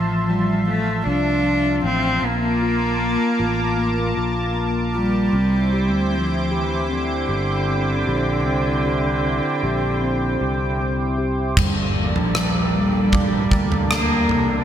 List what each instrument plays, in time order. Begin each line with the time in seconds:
Already playing: fretless electric bass A1, tine electric piano F3, cello F3, analog synth pad F4 E5 A5 C6
0.27 tine electric piano F3, cello G3
0.67 tine electric piano F3, cello A3
1.05 fretless electric bass C2, tine electric piano F3, cello D4
1.44 tine electric piano F3
1.84 fretless electric bass A1, tine electric piano F3, cello C4
2.22 fretless electric bass A#1, tine electric piano A#3, cello A#3, analog synth pad A#4 A5 D6
2.62 tine electric piano F4
3.00 tine electric piano A#3
3.39 fretless electric bass A1, tine electric piano F4
3.77 tine electric piano A#3
4.17 fretless electric bass A#1, tine electric piano F4
4.57 tine electric piano A#3
4.95 cello G3, tine electric piano F4
5.33 fretless electric bass C2, tine electric piano C4, analog synth pad E4 C5 G5 D6
5.73 tine electric piano G4
5.92 fretless electric bass D2
6.12 cello F3, tine electric piano C4
6.52 cello E3, tine electric piano G4
6.89 cello D3, tine electric piano C4
7.29 fretless electric bass G1, tine electric piano G4
7.68 tine electric piano C4
8.07 fretless electric bass A#1, tine electric piano G4
8.45 fretless electric bass C2, tine electric piano C4
8.86 tine electric piano G4
9.24 tine electric piano C4
9.63 fretless electric bass A#1, tine electric piano G4
10.02 tine electric piano C4
10.41 fretless electric bass C2, tine electric piano G4
10.80 tine electric piano C4
11.18 tine electric piano G4
11.57 fretless electric bass G1, tine electric piano G3, analog synth pad G3 A#3 D4 A4 D5, kick, floor tom, crash
11.97 cello F3, tine electric piano G3
12.16 fretless electric bass A#1, floor tom
12.35 tine electric piano G3, cross-stick
12.75 tine electric piano G3, cello G3
12.97 cello G3
13.12 tine electric piano G3, kick, floor tom
13.51 fretless electric bass D2, tine electric piano G3, kick
13.72 floor tom
13.91 tine electric piano G3, cello A#3, cross-stick
14.29 fretless electric bass C2, tine electric piano G3, floor tom